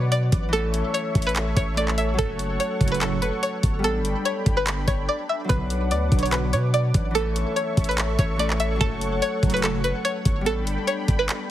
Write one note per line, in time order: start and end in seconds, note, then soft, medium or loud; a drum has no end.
0.00 0.30 B2 loud
0.00 0.58 F#3 medium
0.00 1.96 B3 medium
0.00 0.61 D4 medium
0.00 0.52 B4 medium
0.00 0.97 B4 medium
0.00 0.51 D5 medium
0.00 0.52 F#5 medium
0.00 0.52 D6 medium
0.12 0.29 D5 medium
0.12 closed hi-hat medium
0.32 0.83 A1 loud
0.32 kick medium
0.32 closed hi-hat medium
0.49 1.73 E3 medium
0.49 1.76 A3 medium
0.53 1.77 C#4 medium
0.53 0.92 A4 loud
0.53 5.46 A4 medium
0.53 3.81 C#5 medium
0.53 2.17 E5 medium
0.53 2.17 C#6 medium
0.53 closed hi-hat medium
0.59 1.79 A4 medium
0.74 closed hi-hat medium
0.94 1.24 C#5 medium
0.94 closed hi-hat medium
1.15 1.55 A1 loud
1.15 kick loud
1.15 closed hi-hat medium
1.22 closed hi-hat medium
1.27 1.34 B4 medium
1.27 closed hi-hat medium
1.36 clap loud
1.36 closed hi-hat medium
1.57 2.16 A1 loud
1.57 1.74 C#5 medium
1.57 kick loud
1.57 closed hi-hat medium
1.74 2.24 E3 medium
1.74 2.16 A3 medium
1.74 2.19 C#4 medium
1.74 1.94 D5 medium
1.74 closed hi-hat medium
1.79 2.20 A4 medium
1.88 clap medium
1.98 2.15 E5 medium
1.98 closed hi-hat medium
2.14 3.89 F#3 medium
2.14 5.50 A3 medium
2.19 2.58 F#1 loud
2.19 2.28 A2 medium
2.19 2.28 C#3 medium
2.19 2.28 F#3 medium
2.19 3.92 C#4 medium
2.19 2.57 A4 loud
2.19 3.83 F#5 medium
2.19 3.83 C#6 medium
2.19 kick loud
2.19 closed hi-hat medium
2.24 3.89 A4 medium
2.39 closed hi-hat medium
2.60 2.90 C#5 medium
2.60 closed hi-hat medium
2.81 3.31 F#1 loud
2.81 3.20 A2 loud
2.81 3.20 C#3 loud
2.81 3.20 F#3 loud
2.81 kick loud
2.81 closed hi-hat medium
2.88 closed hi-hat medium
2.92 3.00 B4 medium
2.92 closed hi-hat medium
3.01 3.18 A4 medium
3.01 clap loud
3.01 closed hi-hat medium
3.22 3.39 B4 medium
3.22 closed hi-hat medium
3.43 3.60 C#5 medium
3.43 closed hi-hat medium
3.63 3.86 G1 loud
3.63 kick medium
3.63 closed hi-hat medium
3.79 5.55 G3 medium
3.79 5.47 B3 medium
3.84 4.02 A1 loud
3.84 7.12 D4 medium
3.84 5.51 D4 medium
3.84 4.23 A4 loud
3.84 5.48 G5 medium
3.84 5.48 B5 medium
3.84 closed hi-hat medium
3.89 6.09 A4 medium
4.00 4.15 G1 loud
4.05 closed hi-hat medium
4.25 4.55 C#5 medium
4.25 closed hi-hat medium
4.46 4.86 G1 loud
4.46 kick loud
4.46 closed hi-hat medium
4.57 4.65 B4 medium
4.67 clap loud
4.67 closed hi-hat medium
4.88 5.08 G1 loud
4.88 5.05 C#5 medium
4.88 kick loud
4.88 closed hi-hat medium
5.09 5.25 D5 medium
5.29 5.46 E5 medium
5.44 7.20 F#3 medium
5.44 8.58 B3 medium
5.49 5.93 B1 loud
5.49 5.59 F#2 medium
5.49 5.59 B2 medium
5.49 5.59 D3 loud
5.49 7.24 D4 medium
5.49 5.88 B4 loud
5.49 7.14 B4 medium
5.49 7.14 F#5 medium
5.49 7.14 D6 medium
5.49 kick loud
5.49 closed hi-hat medium
5.55 7.60 B4 medium
5.70 closed hi-hat medium
5.91 6.11 D2 loud
5.91 6.21 D5 medium
5.91 closed hi-hat medium
6.12 6.55 B1 loud
6.12 6.51 B2 loud
6.12 6.51 D3 medium
6.12 6.51 F#3 loud
6.12 kick loud
6.12 closed hi-hat medium
6.19 6.31 C#5 medium
6.19 closed hi-hat medium
6.26 closed hi-hat medium
6.32 6.49 B4 medium
6.32 clap loud
6.32 closed hi-hat medium
6.53 6.92 B2 loud
6.53 6.70 C#5 medium
6.53 closed hi-hat medium
6.74 6.91 D5 medium
6.74 closed hi-hat medium
6.94 7.45 A1 loud
6.94 kick medium
6.94 closed hi-hat medium
7.11 8.35 E3 medium
7.11 8.38 A3 medium
7.15 8.39 C#4 medium
7.15 7.54 A4 loud
7.15 11.51 A4 medium
7.15 10.43 C#5 medium
7.15 8.79 E5 medium
7.15 10.43 C#6 medium
7.15 closed hi-hat medium
7.21 8.41 A4 medium
7.36 closed hi-hat medium
7.56 7.86 C#5 medium
7.56 closed hi-hat medium
7.77 8.17 A1 loud
7.77 kick loud
7.77 closed hi-hat medium
7.84 closed hi-hat medium
7.89 7.97 B4 medium
7.89 closed hi-hat medium
7.98 clap loud
7.98 closed hi-hat medium
8.19 8.78 A1 loud
8.19 8.36 C#5 medium
8.19 kick loud
8.19 closed hi-hat medium
8.36 8.86 E3 medium
8.36 8.78 A3 medium
8.36 8.81 C#4 soft
8.36 8.56 D5 medium
8.36 closed hi-hat medium
8.41 8.82 A4 medium
8.50 clap medium
8.60 8.77 E5 medium
8.60 closed hi-hat medium
8.76 10.51 F#3 medium
8.76 11.51 A3 medium
8.81 9.20 F#1 loud
8.81 8.90 A2 medium
8.81 8.90 C#3 medium
8.81 8.90 F#3 medium
8.81 10.54 C#4 medium
8.81 9.20 A4 loud
8.81 10.45 F#5 medium
8.81 kick loud
8.81 closed hi-hat medium
8.86 10.51 A4 medium
9.01 closed hi-hat medium
9.22 9.52 C#5 medium
9.22 closed hi-hat medium
9.43 9.93 F#1 loud
9.43 9.82 A2 medium
9.43 9.82 C#3 loud
9.43 9.82 F#3 loud
9.43 kick loud
9.43 closed hi-hat medium
9.50 closed hi-hat medium
9.54 9.62 B4 medium
9.54 closed hi-hat medium
9.63 9.80 A4 medium
9.63 clap loud
9.63 closed hi-hat medium
9.84 10.01 B4 medium
9.84 closed hi-hat medium
10.05 10.22 C#5 medium
10.05 closed hi-hat medium
10.25 10.48 G1 loud
10.25 kick loud
10.25 closed hi-hat medium
10.41 11.51 G3 medium
10.41 11.51 B3 medium
10.46 10.64 A1 loud
10.46 11.51 D4 medium
10.46 10.85 A4 medium
10.46 11.51 G5 medium
10.46 11.51 B5 medium
10.46 closed hi-hat medium
10.51 11.51 A4 medium
10.62 10.77 G1 loud
10.67 closed hi-hat medium
10.87 11.17 C#5 medium
10.87 closed hi-hat medium
11.08 11.28 G1 loud
11.08 kick loud
11.08 closed hi-hat medium
11.19 11.27 B4 medium
11.29 clap loud
11.29 closed hi-hat medium